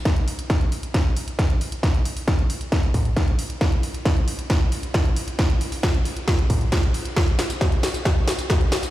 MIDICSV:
0, 0, Header, 1, 2, 480
1, 0, Start_track
1, 0, Tempo, 444444
1, 59, Time_signature, 4, 2, 24, 8
1, 9614, End_track
2, 0, Start_track
2, 0, Title_t, "Drums"
2, 58, Note_on_c, 9, 36, 113
2, 58, Note_on_c, 9, 38, 43
2, 58, Note_on_c, 9, 42, 74
2, 166, Note_off_c, 9, 36, 0
2, 166, Note_off_c, 9, 38, 0
2, 166, Note_off_c, 9, 42, 0
2, 178, Note_on_c, 9, 42, 36
2, 286, Note_off_c, 9, 42, 0
2, 299, Note_on_c, 9, 46, 96
2, 407, Note_off_c, 9, 46, 0
2, 419, Note_on_c, 9, 42, 51
2, 527, Note_off_c, 9, 42, 0
2, 538, Note_on_c, 9, 36, 107
2, 539, Note_on_c, 9, 38, 44
2, 539, Note_on_c, 9, 42, 74
2, 646, Note_off_c, 9, 36, 0
2, 647, Note_off_c, 9, 38, 0
2, 647, Note_off_c, 9, 42, 0
2, 659, Note_on_c, 9, 42, 35
2, 767, Note_off_c, 9, 42, 0
2, 778, Note_on_c, 9, 46, 97
2, 886, Note_off_c, 9, 46, 0
2, 898, Note_on_c, 9, 42, 51
2, 1006, Note_off_c, 9, 42, 0
2, 1018, Note_on_c, 9, 36, 108
2, 1019, Note_on_c, 9, 38, 48
2, 1019, Note_on_c, 9, 42, 76
2, 1126, Note_off_c, 9, 36, 0
2, 1127, Note_off_c, 9, 38, 0
2, 1127, Note_off_c, 9, 42, 0
2, 1259, Note_on_c, 9, 46, 98
2, 1367, Note_off_c, 9, 46, 0
2, 1379, Note_on_c, 9, 42, 49
2, 1487, Note_off_c, 9, 42, 0
2, 1498, Note_on_c, 9, 36, 113
2, 1500, Note_on_c, 9, 38, 50
2, 1500, Note_on_c, 9, 42, 77
2, 1606, Note_off_c, 9, 36, 0
2, 1608, Note_off_c, 9, 38, 0
2, 1608, Note_off_c, 9, 42, 0
2, 1620, Note_on_c, 9, 42, 34
2, 1728, Note_off_c, 9, 42, 0
2, 1740, Note_on_c, 9, 46, 98
2, 1848, Note_off_c, 9, 46, 0
2, 1860, Note_on_c, 9, 42, 51
2, 1968, Note_off_c, 9, 42, 0
2, 1978, Note_on_c, 9, 36, 117
2, 1980, Note_on_c, 9, 38, 49
2, 1980, Note_on_c, 9, 42, 71
2, 2086, Note_off_c, 9, 36, 0
2, 2088, Note_off_c, 9, 38, 0
2, 2088, Note_off_c, 9, 42, 0
2, 2100, Note_on_c, 9, 42, 35
2, 2208, Note_off_c, 9, 42, 0
2, 2219, Note_on_c, 9, 46, 104
2, 2327, Note_off_c, 9, 46, 0
2, 2339, Note_on_c, 9, 46, 59
2, 2447, Note_off_c, 9, 46, 0
2, 2458, Note_on_c, 9, 36, 115
2, 2459, Note_on_c, 9, 38, 50
2, 2459, Note_on_c, 9, 42, 74
2, 2566, Note_off_c, 9, 36, 0
2, 2567, Note_off_c, 9, 38, 0
2, 2567, Note_off_c, 9, 42, 0
2, 2579, Note_on_c, 9, 42, 36
2, 2687, Note_off_c, 9, 42, 0
2, 2698, Note_on_c, 9, 46, 104
2, 2806, Note_off_c, 9, 46, 0
2, 2818, Note_on_c, 9, 42, 50
2, 2926, Note_off_c, 9, 42, 0
2, 2938, Note_on_c, 9, 36, 114
2, 2938, Note_on_c, 9, 38, 52
2, 2938, Note_on_c, 9, 42, 75
2, 3046, Note_off_c, 9, 36, 0
2, 3046, Note_off_c, 9, 38, 0
2, 3046, Note_off_c, 9, 42, 0
2, 3059, Note_on_c, 9, 42, 36
2, 3167, Note_off_c, 9, 42, 0
2, 3178, Note_on_c, 9, 36, 59
2, 3178, Note_on_c, 9, 46, 106
2, 3178, Note_on_c, 9, 47, 76
2, 3286, Note_off_c, 9, 36, 0
2, 3286, Note_off_c, 9, 46, 0
2, 3286, Note_off_c, 9, 47, 0
2, 3298, Note_on_c, 9, 42, 50
2, 3406, Note_off_c, 9, 42, 0
2, 3418, Note_on_c, 9, 38, 56
2, 3418, Note_on_c, 9, 42, 78
2, 3419, Note_on_c, 9, 36, 122
2, 3526, Note_off_c, 9, 38, 0
2, 3526, Note_off_c, 9, 42, 0
2, 3527, Note_off_c, 9, 36, 0
2, 3539, Note_on_c, 9, 42, 34
2, 3647, Note_off_c, 9, 42, 0
2, 3658, Note_on_c, 9, 46, 104
2, 3766, Note_off_c, 9, 46, 0
2, 3779, Note_on_c, 9, 42, 51
2, 3887, Note_off_c, 9, 42, 0
2, 3899, Note_on_c, 9, 36, 125
2, 3899, Note_on_c, 9, 38, 56
2, 3899, Note_on_c, 9, 42, 72
2, 4007, Note_off_c, 9, 36, 0
2, 4007, Note_off_c, 9, 38, 0
2, 4007, Note_off_c, 9, 42, 0
2, 4019, Note_on_c, 9, 42, 34
2, 4127, Note_off_c, 9, 42, 0
2, 4140, Note_on_c, 9, 46, 105
2, 4248, Note_off_c, 9, 46, 0
2, 4260, Note_on_c, 9, 42, 48
2, 4368, Note_off_c, 9, 42, 0
2, 4379, Note_on_c, 9, 36, 120
2, 4379, Note_on_c, 9, 38, 57
2, 4379, Note_on_c, 9, 42, 74
2, 4487, Note_off_c, 9, 36, 0
2, 4487, Note_off_c, 9, 38, 0
2, 4487, Note_off_c, 9, 42, 0
2, 4499, Note_on_c, 9, 42, 34
2, 4607, Note_off_c, 9, 42, 0
2, 4619, Note_on_c, 9, 46, 105
2, 4727, Note_off_c, 9, 46, 0
2, 4739, Note_on_c, 9, 42, 48
2, 4847, Note_off_c, 9, 42, 0
2, 4858, Note_on_c, 9, 38, 60
2, 4858, Note_on_c, 9, 42, 73
2, 4859, Note_on_c, 9, 36, 118
2, 4966, Note_off_c, 9, 38, 0
2, 4966, Note_off_c, 9, 42, 0
2, 4967, Note_off_c, 9, 36, 0
2, 5098, Note_on_c, 9, 46, 108
2, 5206, Note_off_c, 9, 46, 0
2, 5218, Note_on_c, 9, 42, 49
2, 5326, Note_off_c, 9, 42, 0
2, 5338, Note_on_c, 9, 38, 62
2, 5338, Note_on_c, 9, 42, 75
2, 5339, Note_on_c, 9, 36, 119
2, 5446, Note_off_c, 9, 38, 0
2, 5446, Note_off_c, 9, 42, 0
2, 5447, Note_off_c, 9, 36, 0
2, 5459, Note_on_c, 9, 42, 33
2, 5567, Note_off_c, 9, 42, 0
2, 5578, Note_on_c, 9, 46, 105
2, 5686, Note_off_c, 9, 46, 0
2, 5699, Note_on_c, 9, 42, 50
2, 5807, Note_off_c, 9, 42, 0
2, 5819, Note_on_c, 9, 36, 120
2, 5819, Note_on_c, 9, 38, 63
2, 5819, Note_on_c, 9, 42, 70
2, 5927, Note_off_c, 9, 36, 0
2, 5927, Note_off_c, 9, 38, 0
2, 5927, Note_off_c, 9, 42, 0
2, 5938, Note_on_c, 9, 42, 34
2, 6046, Note_off_c, 9, 42, 0
2, 6059, Note_on_c, 9, 46, 105
2, 6167, Note_off_c, 9, 46, 0
2, 6179, Note_on_c, 9, 46, 61
2, 6287, Note_off_c, 9, 46, 0
2, 6299, Note_on_c, 9, 36, 116
2, 6299, Note_on_c, 9, 38, 65
2, 6299, Note_on_c, 9, 42, 72
2, 6407, Note_off_c, 9, 36, 0
2, 6407, Note_off_c, 9, 38, 0
2, 6407, Note_off_c, 9, 42, 0
2, 6419, Note_on_c, 9, 42, 33
2, 6527, Note_off_c, 9, 42, 0
2, 6539, Note_on_c, 9, 46, 102
2, 6647, Note_off_c, 9, 46, 0
2, 6659, Note_on_c, 9, 42, 48
2, 6767, Note_off_c, 9, 42, 0
2, 6778, Note_on_c, 9, 38, 69
2, 6778, Note_on_c, 9, 42, 73
2, 6779, Note_on_c, 9, 36, 115
2, 6886, Note_off_c, 9, 38, 0
2, 6886, Note_off_c, 9, 42, 0
2, 6887, Note_off_c, 9, 36, 0
2, 6898, Note_on_c, 9, 42, 34
2, 7006, Note_off_c, 9, 42, 0
2, 7019, Note_on_c, 9, 36, 61
2, 7019, Note_on_c, 9, 46, 107
2, 7019, Note_on_c, 9, 47, 82
2, 7127, Note_off_c, 9, 36, 0
2, 7127, Note_off_c, 9, 46, 0
2, 7127, Note_off_c, 9, 47, 0
2, 7139, Note_on_c, 9, 42, 47
2, 7247, Note_off_c, 9, 42, 0
2, 7259, Note_on_c, 9, 36, 122
2, 7259, Note_on_c, 9, 38, 72
2, 7259, Note_on_c, 9, 42, 77
2, 7367, Note_off_c, 9, 36, 0
2, 7367, Note_off_c, 9, 38, 0
2, 7367, Note_off_c, 9, 42, 0
2, 7379, Note_on_c, 9, 42, 34
2, 7487, Note_off_c, 9, 42, 0
2, 7499, Note_on_c, 9, 46, 106
2, 7607, Note_off_c, 9, 46, 0
2, 7619, Note_on_c, 9, 42, 49
2, 7727, Note_off_c, 9, 42, 0
2, 7738, Note_on_c, 9, 38, 71
2, 7738, Note_on_c, 9, 42, 72
2, 7738, Note_on_c, 9, 54, 31
2, 7739, Note_on_c, 9, 36, 117
2, 7846, Note_off_c, 9, 38, 0
2, 7846, Note_off_c, 9, 42, 0
2, 7846, Note_off_c, 9, 54, 0
2, 7847, Note_off_c, 9, 36, 0
2, 7858, Note_on_c, 9, 42, 34
2, 7966, Note_off_c, 9, 42, 0
2, 7979, Note_on_c, 9, 38, 71
2, 7979, Note_on_c, 9, 46, 103
2, 7979, Note_on_c, 9, 54, 74
2, 8087, Note_off_c, 9, 38, 0
2, 8087, Note_off_c, 9, 46, 0
2, 8087, Note_off_c, 9, 54, 0
2, 8099, Note_on_c, 9, 42, 50
2, 8099, Note_on_c, 9, 54, 44
2, 8207, Note_off_c, 9, 42, 0
2, 8207, Note_off_c, 9, 54, 0
2, 8219, Note_on_c, 9, 36, 111
2, 8219, Note_on_c, 9, 38, 72
2, 8219, Note_on_c, 9, 42, 74
2, 8219, Note_on_c, 9, 54, 32
2, 8327, Note_off_c, 9, 36, 0
2, 8327, Note_off_c, 9, 38, 0
2, 8327, Note_off_c, 9, 42, 0
2, 8327, Note_off_c, 9, 54, 0
2, 8339, Note_on_c, 9, 42, 35
2, 8447, Note_off_c, 9, 42, 0
2, 8459, Note_on_c, 9, 38, 74
2, 8459, Note_on_c, 9, 46, 101
2, 8459, Note_on_c, 9, 54, 76
2, 8567, Note_off_c, 9, 38, 0
2, 8567, Note_off_c, 9, 46, 0
2, 8567, Note_off_c, 9, 54, 0
2, 8578, Note_on_c, 9, 42, 48
2, 8578, Note_on_c, 9, 54, 43
2, 8686, Note_off_c, 9, 42, 0
2, 8686, Note_off_c, 9, 54, 0
2, 8698, Note_on_c, 9, 38, 77
2, 8698, Note_on_c, 9, 42, 74
2, 8698, Note_on_c, 9, 54, 33
2, 8699, Note_on_c, 9, 36, 116
2, 8806, Note_off_c, 9, 38, 0
2, 8806, Note_off_c, 9, 42, 0
2, 8806, Note_off_c, 9, 54, 0
2, 8807, Note_off_c, 9, 36, 0
2, 8938, Note_on_c, 9, 38, 77
2, 8938, Note_on_c, 9, 46, 103
2, 8938, Note_on_c, 9, 54, 76
2, 9046, Note_off_c, 9, 38, 0
2, 9046, Note_off_c, 9, 46, 0
2, 9046, Note_off_c, 9, 54, 0
2, 9057, Note_on_c, 9, 42, 49
2, 9057, Note_on_c, 9, 54, 42
2, 9165, Note_off_c, 9, 42, 0
2, 9165, Note_off_c, 9, 54, 0
2, 9178, Note_on_c, 9, 36, 119
2, 9178, Note_on_c, 9, 38, 80
2, 9178, Note_on_c, 9, 42, 76
2, 9178, Note_on_c, 9, 54, 32
2, 9286, Note_off_c, 9, 36, 0
2, 9286, Note_off_c, 9, 38, 0
2, 9286, Note_off_c, 9, 42, 0
2, 9286, Note_off_c, 9, 54, 0
2, 9297, Note_on_c, 9, 42, 34
2, 9405, Note_off_c, 9, 42, 0
2, 9417, Note_on_c, 9, 38, 79
2, 9417, Note_on_c, 9, 46, 104
2, 9417, Note_on_c, 9, 54, 77
2, 9525, Note_off_c, 9, 38, 0
2, 9525, Note_off_c, 9, 46, 0
2, 9525, Note_off_c, 9, 54, 0
2, 9537, Note_on_c, 9, 42, 49
2, 9537, Note_on_c, 9, 54, 43
2, 9614, Note_off_c, 9, 42, 0
2, 9614, Note_off_c, 9, 54, 0
2, 9614, End_track
0, 0, End_of_file